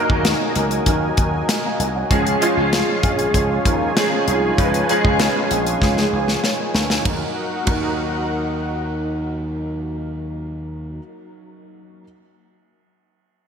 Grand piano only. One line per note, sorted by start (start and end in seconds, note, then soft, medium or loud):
0.00 0.24 F#3 loud
0.00 0.25 A#3 loud
0.00 0.25 D#4 loud
0.00 2.11 G#4 medium
0.00 0.26 A#4 loud
0.00 1.96 C#5 loud
0.24 0.50 F#3 medium
0.24 0.50 A#3 medium
0.24 0.50 D#4 medium
0.24 0.50 A#4 medium
0.55 0.81 F#3 medium
0.55 0.81 A#3 medium
0.55 0.81 D#4 medium
0.55 0.81 A#4 medium
0.86 1.11 F#3 medium
0.86 1.11 A#3 medium
0.86 1.12 D#4 medium
0.86 1.12 A#4 medium
1.64 1.79 F5 medium
1.64 1.79 A#5 medium
1.80 1.95 D#5 medium
1.80 1.95 G#5 medium
1.95 2.25 C#5 soft
1.95 2.25 F#5 medium
2.10 2.35 F3 loud
2.10 2.35 G#3 medium
2.10 2.36 C#4 loud
2.10 2.36 G#4 loud
2.41 2.66 F3 loud
2.41 2.66 G#3 loud
2.41 2.66 C#4 loud
2.41 2.67 F4 loud
2.72 2.97 F3 medium
2.72 2.97 G#3 medium
2.72 2.98 C#4 medium
2.72 2.98 G#4 medium
3.03 3.28 F3 medium
3.03 3.28 G#3 medium
3.03 3.29 C#4 medium
3.03 3.29 G#4 medium
3.34 3.59 F3 medium
3.34 3.59 G#3 medium
3.34 3.59 C#4 medium
3.34 3.60 G#4 medium
3.65 3.90 F3 medium
3.65 3.90 G#3 medium
3.65 3.90 C#4 medium
3.65 3.91 A#4 medium
3.96 4.21 F3 loud
3.96 4.21 G#3 medium
3.96 4.21 C#4 loud
3.96 4.22 G#4 loud
4.27 4.52 F3 medium
4.27 4.52 G#3 medium
4.27 4.52 C#4 medium
4.27 4.52 D#4 medium
4.58 4.83 F3 loud
4.58 4.83 G#3 medium
4.58 4.83 C#4 medium
4.58 4.83 B4 loud
4.89 5.14 F3 loud
4.89 5.14 G#3 loud
4.89 5.14 C#4 medium
4.89 5.14 G#4 loud
5.20 5.45 F3 medium
5.20 5.45 G#3 medium
5.20 5.45 C#4 medium
5.20 5.45 G#4 medium
5.51 5.76 F3 medium
5.51 5.76 G#3 medium
5.51 5.76 C#4 medium
5.51 5.76 G#4 medium
5.81 6.06 F3 medium
5.81 6.07 G#3 medium
5.81 6.07 C#4 medium
5.81 6.07 G#4 medium
6.44 6.59 G#4 soft
6.44 6.58 C#5 medium
6.60 6.74 A#4 medium
6.60 6.74 D#5 medium
6.75 6.90 B4 soft
6.75 6.89 F5 medium
6.90 7.20 D#5 soft
6.90 7.19 G#5 medium
7.03 7.21 F#3 medium
7.03 7.22 A#3 medium
7.03 7.23 D#4 medium
7.08 7.24 A#4 medium
7.64 10.97 F#3 medium
7.64 10.98 A#3 medium
7.64 10.99 D#4 medium
7.69 11.00 A#4 medium